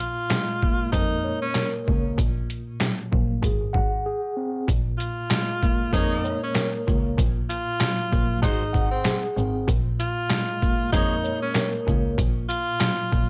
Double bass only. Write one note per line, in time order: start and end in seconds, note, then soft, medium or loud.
0.93 1.17 F2 loud
1.88 2.01 C#2 medium
2.18 2.42 A#1 loud
3.13 3.36 A#1 medium
3.43 3.57 G#1 loud
3.62 3.71 G#1 soft
3.74 3.98 G#1 medium
4.68 4.92 A#1 loud
5.93 6.17 F2 loud
6.88 7.01 C#2 medium
7.18 7.42 A#1 loud
8.13 8.36 A#1 medium
8.43 8.57 G#1 loud
8.62 8.71 G#1 soft
8.74 8.98 G#1 medium
9.37 9.61 G#1 medium
9.68 9.92 A#1 loud
10.93 11.17 F2 loud
11.88 12.01 C#2 medium
12.18 12.42 A#1 loud
13.13 13.29 A#1 loud